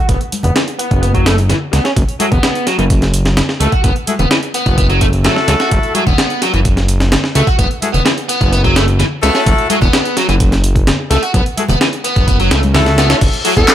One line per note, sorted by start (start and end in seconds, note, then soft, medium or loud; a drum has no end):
0.09 0.16 F#1 loud
0.09 0.18 B3 medium
0.09 kick loud
0.09 closed hi-hat medium
0.09 closed hi-hat soft
0.21 closed hi-hat soft
0.32 closed hi-hat medium
0.32 high conga medium
0.43 0.51 E1 loud
0.43 0.53 B3 medium
0.43 closed hi-hat soft
0.43 low conga medium
0.56 0.61 E3 medium
0.56 snare loud
0.56 closed hi-hat medium
0.56 closed hi-hat soft
0.68 closed hi-hat soft
0.79 1.01 B3 medium
0.79 closed hi-hat medium
0.91 1.54 F#1 medium
0.91 kick medium
0.91 closed hi-hat soft
1.03 1.11 B3 medium
1.03 closed hi-hat medium
1.03 closed hi-hat soft
1.14 1.26 F#3 loud
1.14 kick medium
1.14 closed hi-hat soft
1.26 1.35 A3 medium
1.26 snare loud
1.26 closed hi-hat medium
1.38 closed hi-hat soft
1.49 1.55 E3 medium
1.49 snare soft
1.49 closed hi-hat medium
1.49 closed hi-hat soft
1.49 low conga medium
1.73 1.80 C#2 medium
1.73 1.84 B3 medium
1.73 snare soft
1.73 closed hi-hat medium
1.85 1.90 C#4 medium
1.85 snare soft
1.85 closed hi-hat soft
1.96 2.04 F#1 loud
1.96 kick loud
1.96 closed hi-hat medium
1.96 closed hi-hat soft
2.09 closed hi-hat soft
2.20 2.29 F#3 medium
2.20 2.26 A3 medium
2.20 2.26 E4 medium
2.20 2.26 F#4 medium
2.20 2.26 G#4 medium
2.20 closed hi-hat medium
2.20 high conga medium
2.32 2.39 E1 loud
2.32 2.66 B3 medium
2.32 kick medium
2.32 closed hi-hat soft
2.32 low conga medium
2.43 snare loud
2.43 closed hi-hat medium
2.43 closed hi-hat soft
2.55 closed hi-hat soft
2.67 2.78 F#3 medium
2.67 snare soft
2.67 closed hi-hat medium
2.78 3.42 F#1 medium
2.78 2.84 E3 medium
2.78 closed hi-hat soft
2.90 kick loud
2.90 closed hi-hat medium
2.90 closed hi-hat soft
3.02 snare soft
3.02 closed hi-hat soft
3.14 closed hi-hat medium
3.25 snare medium
3.25 closed hi-hat soft
3.37 snare loud
3.37 closed hi-hat medium
3.37 closed hi-hat soft
3.37 low conga medium
3.49 snare soft
3.60 3.68 C#2 medium
3.60 3.67 A3 medium
3.60 3.72 A3 medium
3.60 3.67 E4 medium
3.60 3.67 F#4 medium
3.60 3.67 A4 medium
3.60 closed hi-hat medium
3.72 3.81 F#4 medium
3.72 kick medium
3.72 closed hi-hat soft
3.84 3.91 F#1 medium
3.84 3.93 B3 medium
3.84 kick loud
3.84 closed hi-hat soft
3.84 closed hi-hat medium
3.96 closed hi-hat soft
4.07 4.14 A3 medium
4.07 4.14 E4 medium
4.07 4.14 F#4 medium
4.07 4.14 G#4 medium
4.07 closed hi-hat medium
4.07 high conga medium
4.19 4.26 E1 loud
4.19 4.28 B3 medium
4.19 closed hi-hat soft
4.19 low conga medium
4.31 4.36 E3 medium
4.31 snare loud
4.31 closed hi-hat medium
4.31 closed hi-hat soft
4.43 closed hi-hat soft
4.54 4.77 B3 medium
4.54 closed hi-hat medium
4.66 5.29 F#1 medium
4.66 kick medium
4.66 closed hi-hat soft
4.78 4.87 B3 medium
4.78 kick loud
4.78 closed hi-hat medium
4.78 closed hi-hat soft
4.90 5.01 F#3 loud
4.90 closed hi-hat soft
5.01 5.06 A3 loud
5.01 kick medium
5.01 closed hi-hat medium
5.13 closed hi-hat soft
5.24 5.35 F#3 medium
5.24 5.92 A3 medium
5.24 5.92 E4 medium
5.24 5.92 F#4 medium
5.24 5.92 A4 loud
5.24 snare loud
5.24 closed hi-hat soft
5.24 closed hi-hat medium
5.24 low conga medium
5.36 snare soft
5.48 5.55 C#2 medium
5.48 5.53 F#3 medium
5.48 snare soft
5.48 closed hi-hat medium
5.60 5.68 F#4 medium
5.60 snare soft
5.60 closed hi-hat soft
5.71 5.79 F#1 loud
5.71 kick loud
5.71 closed hi-hat soft
5.71 closed hi-hat medium
5.83 closed hi-hat soft
5.95 6.04 F#3 medium
5.95 6.01 A3 medium
5.95 6.01 E4 medium
5.95 6.01 F#4 medium
5.95 6.01 G#4 medium
5.95 closed hi-hat medium
5.95 high conga medium
6.06 6.14 E1 loud
6.06 6.41 B3 medium
6.06 kick medium
6.06 closed hi-hat soft
6.06 low conga medium
6.18 snare loud
6.18 closed hi-hat medium
6.18 closed hi-hat soft
6.30 closed hi-hat soft
6.42 6.53 F#3 medium
6.42 snare soft
6.42 closed hi-hat medium
6.53 7.17 F#1 medium
6.53 6.59 E3 medium
6.53 closed hi-hat soft
6.65 kick loud
6.65 closed hi-hat medium
6.65 closed hi-hat soft
6.77 snare soft
6.77 closed hi-hat soft
6.88 closed hi-hat medium
7.00 snare medium
7.00 closed hi-hat soft
7.12 snare loud
7.12 closed hi-hat medium
7.12 closed hi-hat soft
7.12 low conga medium
7.24 snare soft
7.35 7.43 C#2 medium
7.35 7.47 A3 medium
7.35 7.42 A3 medium
7.35 7.42 E4 medium
7.35 7.42 F#4 medium
7.35 7.42 A4 medium
7.35 closed hi-hat medium
7.47 7.56 F#4 medium
7.47 kick loud
7.47 closed hi-hat soft
7.59 7.66 F#1 loud
7.59 7.68 B3 medium
7.59 kick loud
7.59 closed hi-hat medium
7.59 closed hi-hat soft
7.71 closed hi-hat soft
7.82 7.89 A3 medium
7.82 7.89 E4 medium
7.82 7.89 F#4 medium
7.82 7.89 G#4 medium
7.82 closed hi-hat medium
7.82 high conga medium
7.94 8.01 E1 loud
7.94 8.03 B3 medium
7.94 closed hi-hat soft
7.94 low conga medium
8.06 8.11 E3 medium
8.06 snare loud
8.06 closed hi-hat medium
8.06 closed hi-hat soft
8.18 closed hi-hat soft
8.29 8.51 B3 medium
8.29 closed hi-hat medium
8.41 9.04 F#1 loud
8.41 kick medium
8.41 closed hi-hat soft
8.53 8.61 B3 medium
8.53 closed hi-hat medium
8.53 closed hi-hat soft
8.64 8.75 F#3 loud
8.64 kick medium
8.64 closed hi-hat soft
8.76 8.85 A3 medium
8.76 snare loud
8.76 closed hi-hat medium
8.88 closed hi-hat soft
8.99 9.05 E3 medium
8.99 snare soft
8.99 closed hi-hat medium
8.99 closed hi-hat soft
8.99 low conga medium
9.23 9.30 C#2 medium
9.23 9.67 A3 loud
9.23 9.34 B3 medium
9.23 9.67 E4 medium
9.23 9.67 F#4 medium
9.23 9.67 A4 loud
9.23 snare soft
9.23 closed hi-hat medium
9.35 9.40 C#4 medium
9.35 snare soft
9.35 closed hi-hat soft
9.46 9.54 F#1 loud
9.46 kick loud
9.46 closed hi-hat soft
9.46 closed hi-hat medium
9.58 closed hi-hat soft
9.70 9.79 F#3 medium
9.70 9.76 A3 medium
9.70 9.76 E4 medium
9.70 9.76 F#4 medium
9.70 9.76 G#4 medium
9.70 closed hi-hat medium
9.70 high conga medium
9.81 9.89 E1 loud
9.81 10.16 B3 medium
9.81 kick medium
9.81 closed hi-hat soft
9.81 low conga medium
9.93 snare loud
9.93 closed hi-hat medium
9.93 closed hi-hat soft
10.05 closed hi-hat soft
10.17 10.28 F#3 medium
10.17 snare soft
10.17 closed hi-hat medium
10.29 10.92 F#1 medium
10.29 10.34 E3 medium
10.29 closed hi-hat soft
10.40 kick loud
10.40 closed hi-hat medium
10.40 closed hi-hat soft
10.52 snare soft
10.52 closed hi-hat soft
10.64 closed hi-hat medium
10.76 kick medium
10.76 closed hi-hat soft
10.87 snare loud
10.87 closed hi-hat medium
10.87 closed hi-hat soft
10.87 low conga medium
11.10 11.18 C#2 medium
11.10 11.17 A3 medium
11.10 11.22 A3 medium
11.10 11.17 E4 medium
11.10 11.17 F#4 medium
11.10 11.17 A4 medium
11.10 snare soft
11.10 closed hi-hat medium
11.23 11.31 F#4 loud
11.23 closed hi-hat soft
11.34 11.41 F#1 medium
11.34 11.43 B3 medium
11.34 kick loud
11.34 closed hi-hat medium
11.34 closed hi-hat soft
11.46 closed hi-hat soft
11.57 11.64 A3 medium
11.57 11.64 E4 medium
11.57 11.64 F#4 medium
11.57 11.64 G#4 medium
11.57 closed hi-hat medium
11.57 high conga medium
11.69 11.76 E1 loud
11.69 11.78 B3 medium
11.69 closed hi-hat soft
11.69 low conga medium
11.81 11.86 E3 medium
11.81 snare loud
11.81 closed hi-hat medium
11.81 closed hi-hat soft
11.93 closed hi-hat soft
12.04 12.26 B3 medium
12.04 closed hi-hat medium
12.16 12.51 F#1 loud
12.16 kick medium
12.16 closed hi-hat soft
12.27 12.36 B3 medium
12.27 kick loud
12.27 closed hi-hat medium
12.27 closed hi-hat soft
12.40 12.51 F#3 loud
12.40 closed hi-hat soft
12.51 13.14 C#2 loud
12.51 12.60 A3 medium
12.51 snare loud
12.51 closed hi-hat medium
12.63 closed hi-hat soft
12.63 high conga medium
12.74 12.80 E3 medium
12.74 13.20 A3 medium
12.74 13.20 E4 medium
12.74 13.20 F#4 medium
12.74 13.20 A4 loud
12.74 snare loud
12.74 closed hi-hat medium
12.74 closed hi-hat soft
12.74 low conga loud
12.86 snare medium
12.86 closed hi-hat soft
12.98 13.09 B3 medium
12.98 snare loud
12.98 closed hi-hat medium
13.10 13.15 C#4 medium
13.10 snare loud
13.10 closed hi-hat medium
13.10 closed hi-hat soft
13.21 13.29 F#1 loud
13.21 kick loud
13.21 closed hi-hat medium
13.21 closed hi-hat soft
13.21 crash medium
13.33 closed hi-hat soft
13.45 13.54 F#3 medium
13.45 13.51 A3 medium
13.45 13.51 E4 medium
13.45 13.51 F#4 medium
13.45 13.51 G#4 medium
13.45 closed hi-hat medium
13.45 open hi-hat medium
13.57 13.64 E1 loud
13.57 13.75 B3 medium
13.57 13.72 A4 medium
13.57 kick medium
13.57 closed hi-hat soft
13.68 snare loud
13.68 clap loud
13.68 closed hi-hat medium
13.68 closed hi-hat soft